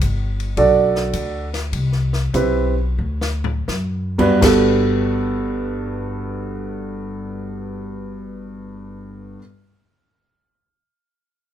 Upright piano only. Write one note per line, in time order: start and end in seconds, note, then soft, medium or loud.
0.57 1.46 D4 medium
0.57 1.46 F#4 medium
0.57 1.46 A4 medium
0.57 1.47 D5 medium
2.34 2.74 C4 medium
2.34 2.74 E4 soft
2.34 2.74 G4 medium
2.34 2.75 B4 medium
4.18 4.40 G2 medium
4.18 4.40 B3 medium
4.18 4.40 D4 medium
4.18 4.40 F#4 medium
4.18 4.40 B4 medium
4.41 9.37 G2 medium
4.41 9.38 G3 medium
4.41 9.39 B3 medium
4.41 9.40 F#4 medium
4.41 9.40 A4 medium